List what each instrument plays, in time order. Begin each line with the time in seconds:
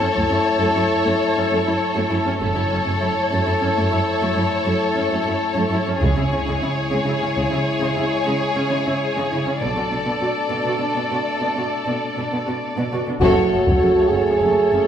Already playing: french horn section A3 E4, violin section A4 C#5
0.00 cello section F#2, viola section C#4
0.15 cello section F#2, viola section A3, taiko
0.30 cello section F#2, viola section E4
0.60 cello section F#2, viola section A3
0.76 cello section F#2, viola section E4
1.06 cello section F#2, viola section A3
1.36 cello section F#2, viola section C#4
1.50 cello section F#2, viola section A3
1.66 cello section F#2, viola section E4
1.96 cello section F#2, viola section A3
2.09 cello section F#2, viola section E4
2.25 cello section F#2, viola section C#4
2.39 double bass section F#1, cello section F#2, viola section A3, french horn section A3 E4, violin section A4 C#5
2.55 cello section F#2, viola section E4
2.71 cello section F#2, viola section C#4
2.86 cello section F#2, viola section A3
3.00 cello section F#2, viola section E4
3.30 cello section F#2, viola section A3
3.46 cello section F#2, viola section E4
3.61 cello section F#2, viola section C#4
3.76 cello section F#2, viola section A3
3.91 cello section F#2, viola section E4
4.21 cello section F#2, viola section A3
4.36 cello section F#2, viola section E4
4.66 cello section F#2, viola section A3
4.95 cello section F#2, viola section C#4
5.11 cello section F#2, viola section A3
5.25 cello section F#2, viola section E4
5.55 cello section F#2, viola section A3
5.71 cello section F#2, viola section E4
5.86 cello section F#2, viola section C#4
5.99 double bass section C#2, cello section C#3, french horn section G#3 E4, viola section G#3, violin section G#4 C#5, taiko
6.17 cello section C#3, viola section E4
6.32 cello section C#3, viola section C#4
6.47 cello section C#3, viola section G#3
6.62 cello section C#3, viola section E4
6.92 cello section C#3, viola section G#3
7.06 cello section C#3, viola section E4
7.21 cello section C#3, viola section C#4
7.36 cello section C#3, viola section G#3, taiko
7.51 cello section C#3, viola section E4
7.81 cello section C#3, viola section G#3
7.96 cello section C#3, viola section E4
8.26 cello section C#3, viola section G#3
8.56 cello section C#3, viola section C#4
8.70 cello section C#3, viola section G#3
8.86 cello section C#3, viola section E4
9.17 cello section C#3, viola section G#3
9.31 cello section C#3, viola section E4
9.46 cello section C#3, viola section C#4
9.60 double bass section B1, cello section B2, french horn section A3 D4, viola section B3, violin section A4 D5
9.76 cello section B2, viola section F#4
9.91 cello section B2, viola section D4
10.04 cello section B2, viola section B3
10.20 cello section B2, viola section F#4
10.50 cello section B2, viola section B3
10.65 cello section B2, viola section F#4
10.79 cello section B2, viola section D4
10.95 cello section B2, viola section B3
11.10 cello section B2, viola section F#4
11.41 cello section B2, viola section B3
11.56 cello section B2, viola section F#4
11.86 cello section B2, viola section B3
12.16 cello section B2, viola section D4
12.32 cello section B2, viola section B3
12.46 cello section B2, viola section F#4
12.76 cello section B2, viola section B3
12.92 cello section B2, viola section F#4
13.07 cello section B2, viola section D4
13.20 double bass section F#1, cello section F#2, trombone section F#3 A3, viola section F#3, french horn section F#4, violin section A4 C#5, taiko
13.38 cello section F#2, viola section C#3
13.53 double bass section F#1, cello section F#2, viola section C#3
13.68 cello section F#2, viola section F#3, taiko
13.82 double bass section F#1, cello section F#2, viola section C#3
13.97 cello section F#2, viola section C#3
14.09 double bass section F#1, cello section F#2, french horn section G#4
14.15 viola section F#3
14.27 cello section F#2, viola section C#3
14.41 double bass section F#1, cello section F#2, viola section F#3
14.72 double bass section F#1, cello section F#2, viola section C#3